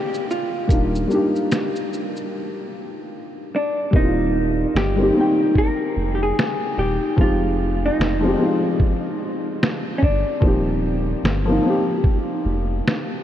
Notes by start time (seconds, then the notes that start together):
Already playing: G4
0.14 shaker
0.31 F4, shaker
0.67 D#1 G3 A#3 D4, kick, closed hi-hat, shaker
0.73 D#4 F4
0.95 shaker
1.07 G3 A#3 D4, shaker
1.13 D#4 G4
1.36 shaker
1.52 finger snap, snare, closed hi-hat, shaker
1.76 shaker
1.93 shaker
2.16 shaker
3.56 D4
3.91 D#1 G3 A#3 C4, kick
3.96 D#4 E4
4.04 F4
4.75 G1 G4, finger snap, snare
4.96 G3 A#3 C4
5.02 D#4 G4
5.13 D#3 A#3 C4
5.18 D#4 G5
5.55 A#4, kick
5.97 F1
6.15 G4
6.23 G#4
6.39 finger snap, snare
6.78 D#1 G4
7.16 F1 F3 G#3 C4, kick
7.21 D#4 F4 G4
7.86 D#4
7.99 F1, finger snap, snare
8.20 F3 G#3 C4
8.26 D#4 G4
8.37 F3 G#3 C4
8.43 D#4 F4
8.80 kick
9.63 finger snap, snare
9.98 C#4
10.03 G1 D4, kick
10.40 D#1 F3 A#3 C4, kick
10.45 D#4 G4
11.24 G1, finger snap, snare
11.45 F3 A#3 C4
11.51 D#4 F4
11.62 F3 A#3 C4
11.68 D#4 G4
12.04 kick
12.45 F1
12.88 finger snap, snare